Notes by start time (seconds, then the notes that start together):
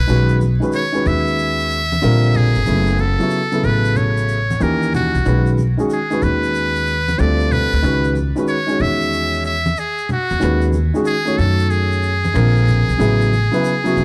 Already playing: B4
0.07 B1 D#3 G#3 C#4 F#4 B4, shaker
0.29 shaker
0.41 high conga, shaker
0.60 D#3 G#3 C#4 F#4 B4, shaker
0.72 C#5, shaker
0.92 D#3 G#3 C#4 F#4 B4, shaker
1.06 D#2 E5, high conga, low conga, shaker
1.27 shaker
1.39 shaker
1.60 shaker
1.70 shaker
1.92 high conga, shaker
2.01 A#1 D3 G3 C4 F4 A#4, shaker
2.24 shaker
2.35 G#4, low conga, shaker
2.55 G1, shaker
2.66 F#1 C#3 F#3 A3 B3 E4, shaker
2.87 shaker
2.98 A4, high conga, shaker
3.19 C#3 F#3 B3 E4 F#4, shaker
3.30 shaker
3.52 C#3 F#3 B3 E4 A4, shaker
3.63 A1 B4, high conga, low conga, shaker
3.85 shaker
3.96 C#5, low conga, shaker
4.17 shaker
4.29 shaker
4.50 high conga, shaker
4.60 D#2 E3 A#3 C#4 D#4 G4 A#4, shaker
4.82 shaker
4.94 F#4, low conga, shaker
5.15 C2, shaker
5.25 B1 D#3 G#3 C#4 F#4 B4, shaker
5.46 shaker
5.58 high conga, shaker
5.77 D#3 G#3 C#4 F#4 G#4, shaker
5.90 G#4, shaker
6.10 D#3 G#3 C#4 F#4 B4, shaker
6.22 D#2 B4, high conga, low conga, shaker
6.43 shaker
6.54 shaker
6.76 shaker
6.87 shaker
7.08 high conga, shaker
7.18 D2 D3 G3 C4 F4 A4 D5, shaker
7.40 shaker
7.51 B4, low conga, shaker
7.73 D2, shaker
7.82 C#2 D#3 G#3 C#4 F#4 B4, shaker
8.04 shaker
8.16 high conga, shaker
8.36 D#3 G#3 C#4 F#4 B4, shaker
8.48 C#5, shaker
8.67 D#3 G#3 C#4 F#4 C#5, shaker
8.80 E2 E5, high conga, low conga, shaker
9.01 shaker
9.13 shaker
9.34 shaker
9.44 E5, shaker
9.66 high conga, shaker
9.76 G#4, shaker
9.98 shaker
10.09 F#4, low conga, shaker
10.30 E2, shaker
10.40 D#2 D#3 G#3 C#4 F#4 B4, shaker
10.61 shaker
10.73 high conga, shaker
10.94 D#3 G#3 C#4 F#4 G#4, shaker
11.05 G#4, shaker
11.25 D#3 A3 C#4 F#4 C#5, shaker
11.38 F#2 A4, high conga, low conga, shaker
11.59 shaker
11.70 G#4, shaker
11.92 shaker
12.03 shaker
12.24 high conga, shaker
12.34 A#1 D3 F3 C4 F4 A#4, shaker
12.56 shaker
12.68 low conga, shaker
12.88 C2, shaker
12.98 A1 C#3 F#3 B3 E4 G#4, shaker
13.21 shaker
13.33 high conga, shaker
13.52 C#3 F#3 B3 E4 B4, shaker
13.64 shaker
13.84 C#3 F#3 B3 E4 F#4, shaker
13.97 C#2, high conga, low conga, shaker